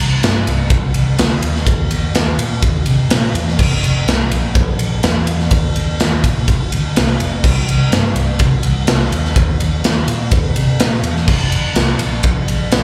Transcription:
0.00 C2
0.23 G2, snare, ride
0.47 C2, ride
0.70 C2, kick, ride
0.94 C2, ride
1.19 D2, snare, ride
1.42 D#2, ride
1.56 snare
1.66 D#2, kick, ride
1.91 D#2, ride
2.14 D#2, snare, ride
2.38 A#2, ride
2.62 D#2, kick, ride
2.86 C3, ride
3.09 A#2, snare, ride
3.34 E2, ride
3.48 snare
3.59 F1, kick, crash
3.82 F1, ride
4.06 C2, snare, ride
4.30 A#1, ride
4.55 A#1, kick, ride
4.79 A#1, ride
5.03 E2, snare, ride
5.27 ride
5.40 snare
5.51 D#2, kick, ride
5.76 D#2, ride
6.00 D#2, snare, ride
6.24 A#2, kick, ride
6.48 F1, kick, ride
6.71 D2, ride
6.95 C2, snare, ride
7.20 F1, ride
7.44 C2, kick, crash
7.68 C2, ride
7.91 G2, snare, ride
8.15 C2, ride
8.39 C2, kick, ride
8.63 C2, ride
8.87 C2, snare, ride
9.11 D#2, ride
9.25 snare
9.36 D#2, kick, ride
9.60 D#2, ride
9.84 D#2, snare, ride
10.08 A#2, ride
10.31 D#2, kick, ride
10.53 C3, ride
10.79 A#2, snare, ride
11.03 E2, ride
11.17 snare
11.28 F1, kick, crash
11.51 F1, ride
11.75 C2, snare, ride
11.98 A#1, ride
12.23 A#1, kick, ride
12.47 A#1, ride
12.72 A#1, snare, ride

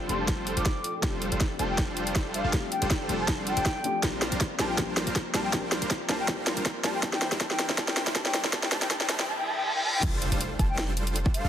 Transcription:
Already playing: F3 A3 C4 D4 F4 G4 A4 D5 G5
0.07 F1 F3 G3 A3 C4 D4 F4 G4 A4 C5 C6, closed hi-hat
0.20 A5
0.28 A5, kick, snare, closed hi-hat
0.47 closed hi-hat
0.57 F1 G3 D4 F4 A4 C5 D6, closed hi-hat
0.65 kick, snare, closed hi-hat
0.84 closed hi-hat
1.01 F1 F3 G3 A3 C4 D4 F4 G4 A4 C5, kick, snare, closed hi-hat
1.22 closed hi-hat
1.32 F1 G3 D4 F4 A4 C5, closed hi-hat
1.40 kick, snare, closed hi-hat
1.57 F1 F3 G3 A3 C4 D4 F4 G4 A4 C5 A5, closed hi-hat
1.69 G5
1.78 kick, snare, closed hi-hat
1.97 closed hi-hat
2.07 closed hi-hat
2.15 kick, snare, closed hi-hat
2.34 F5, closed hi-hat
2.44 F1 G3 D4 F4 A4 F5
2.51 F1 F3 G3 A3 C4 D4 F4 G4 A4 F5, kick, snare, closed hi-hat
2.72 G5, closed hi-hat
2.82 F1 G3 D4 F4 A4 C5, closed hi-hat
2.90 kick, snare, closed hi-hat
3.07 F1 F3 G3 A3 C4 D4 F4 G4 A4 C5, closed hi-hat
3.19 A5
3.28 kick, snare, closed hi-hat
3.47 G5, closed hi-hat
3.57 F1 G3 D4 F4 A4 C5, closed hi-hat
3.65 kick, snare, closed hi-hat
3.83 F3 A3 C4 D4 G4, closed hi-hat
4.01 A#1 F3 G3 C4 D4 F4 G4 A#4 C5, kick, snare, closed hi-hat, riser
4.22 snare, closed hi-hat
4.32 A#1 G3 D4 F4 A#4 C5, closed hi-hat
4.40 kick, snare, closed hi-hat
4.57 A#1 F3 G3 A#3 C4 D4 F4 A#4 C5 A5, snare, closed hi-hat
4.61 G4
4.69 G5
4.76 A#1 F3 G3 A#3 C4 D4 F4 G4 A#4 C5, kick, snare, closed hi-hat
4.97 snare, closed hi-hat
5.07 A#1 G3 D4 F4 A#4 C5, closed hi-hat
5.16 kick, snare, closed hi-hat
5.33 A#1 F3 G3 A#3 C4 D4 F4 G4 A#4 C5 A5, snare, closed hi-hat
5.44 G5
5.51 A#1 F3 G3 A#3 C4 D4 F4 A#4 C5, kick, snare, closed hi-hat
5.55 G4
5.72 snare, closed hi-hat
5.82 A#1 G3 D4 F4 A#4 C5, closed hi-hat
5.90 kick, snare, closed hi-hat
6.08 A#1 F3 G3 A#3 C4 D4 F4 G4 A#4 C5 A5, snare, closed hi-hat
6.20 G5
6.26 A#1 F3 G3 A#3 C4 D4 F4 G4 A#4 C5, kick, snare, closed hi-hat
6.47 snare, closed hi-hat
6.57 A#1 G3 D4 F4 A#4 C5, closed hi-hat
6.65 kick, snare, closed hi-hat
6.82 A#1 F3 G3 A#3 C4 D4 F4 G4 A#4 C5 A5, snare, closed hi-hat
6.94 G5
7.01 C2 E3 G3 A#3 C4 D4 E4 A4 A#4 C5 D5 E5 A5, kick, snare, closed hi-hat
7.05 G4
7.13 G5, snare
7.22 snare, closed hi-hat
7.32 C2 G3 D4 E4 A#4 C5, snare, closed hi-hat
7.39 C2 E3 G3 A#3 C4 D4 E4 G4 A#4 C5 A5, kick, snare, closed hi-hat
7.51 G5, snare
7.59 snare, closed hi-hat
7.69 C2 G3 D4 E4 A#4 C5, snare
7.76 C2 E3 G3 A#3 C4 D4 E4 G4 A#4 C5 A5, kick, snare, closed hi-hat
7.88 G5, snare
7.97 snare, closed hi-hat
8.07 C2 G3 D4 E4 A#4 C5, snare, closed hi-hat
8.14 C2 E3 G3 A#3 C4 D4 E4 G4 A#4 C5 A5, kick, snare, closed hi-hat
8.25 G5, snare
8.34 snare, closed hi-hat
8.44 C2 G3 D4 E4 A#4 C5, snare
8.51 C2 E3 G3 A#3 C4 D4 E4 G4 A#4 C5 A5, kick, snare, closed hi-hat
8.63 G5, snare
8.70 C2 E3 G3 A#3 C4 D4 E4 A#4 C5 A5, snare, closed hi-hat
8.74 G4
8.82 G5, snare, closed hi-hat
8.89 C2 E3 G3 A#3 C4 D4 E4 A#4 C5 A5, kick, snare, closed hi-hat
8.93 G4
9.00 G5, snare
9.07 C2 E3 G3 A#3 C4 D4 E4 A#4 C5 A5, snare, closed hi-hat
9.11 G4
9.19 G5, snare
9.28 A5, reverse cymbal
9.38 G5
9.47 A5
9.57 G5
9.65 A5
9.76 G5
9.84 A5
9.94 G5
10.03 F1 G3 D4 F4 A4 C5, kick, closed hi-hat, crash, impact
10.22 closed hi-hat
10.32 F1 G3 D4 F4 A4 C5, closed hi-hat
10.41 closed hi-hat
10.59 F1 G3 D4 F4 A4 C5 A5, kick, closed hi-hat
10.69 G5
10.78 snare, closed hi-hat
10.97 closed hi-hat
11.07 closed hi-hat
11.16 closed hi-hat
11.26 kick
11.34 F5, closed hi-hat
11.44 F1 G3 D4 F4 A4 F5

